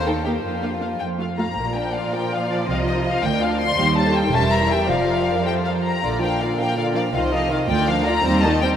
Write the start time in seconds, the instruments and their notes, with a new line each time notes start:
Already playing: cello section D#2
0.06 viola section A#3 D#4, violin section A4 G5
0.25 viola section A#3 D#4, violin section G4 G5
0.43 cello section F2, violin section F4
0.62 viola section A#3 D4, violin section F5
0.81 viola section A#3 D4, violin section F5
1.00 cello section F2, violin section G5
1.18 viola section A3 F4, violin section F5
1.38 viola section A3 F4, violin section F5 A#5
1.56 double bass section A#1, cello section A#2, viola section F3 F4, violin section A#3 D5
1.76 violin section D4 G5
1.95 violin section F4 F5
2.13 violin section A#4 G5
2.31 violin section F4 F5
2.51 violin section D4 D5
2.69 double bass section C2, cello section C3, violin section C4 D#5 F5
2.88 violin section D#4 D#5
3.06 violin section F4 F5
3.24 cello section D2, double bass section D2, violin section A#3 D5 G5
3.43 violin section D4 F5
3.60 violin section F4 C6
3.78 double bass section D#2, cello section D#2, viola section G3 D#4, violin section G4 C5
3.98 violin section A5
4.06 violin section A4
4.15 violin section G5
4.32 double bass section E1, cello section E2, viola section G3 C#4, violin section A#4 E5 A5
4.53 violin section A#5
4.60 viola section E4
4.72 violin section G5
4.89 double bass section F1, cello section F2, viola section F3 F4, violin section A#4 D5 F5
5.45 viola section F3 F4, violin section A4 C5 G5
5.65 violin section F5
5.84 violin section A#5
6.02 double bass section A#1, cello section A#2, viola section D3 F4, violin section D5
6.21 viola section F3 D4, violin section A#4 F5 G5
6.41 viola section D3 F4, violin section D5 F5
6.58 viola section F3 D4, violin section A#4 F5 G5
6.77 viola section D3 F4, violin section D5 F5
6.96 viola section F3 D4, violin section A#4 D5 F5
7.14 double bass section C2, cello section C3, viola section D#3 F4, violin section C5 D#5 F5
7.33 viola section F3 D#4, violin section A4 D#5 F5
7.51 viola section D#3 F4, violin section C5 D#5 F5
7.68 double bass section D2, cello section D2, viola section D3 F4, violin section D5 G5
7.87 viola section F3 D4, violin section A#4 F5
8.05 viola section D3 F4, violin section D5 A#5
8.23 double bass section D#2, cello section D#2, viola section G3 C4, violin section D#4 C5
8.41 viola section D#4, violin section G4 D#5 A5
8.45 viola section D#3
8.60 viola section G3 C4, violin section D#4 C5 G5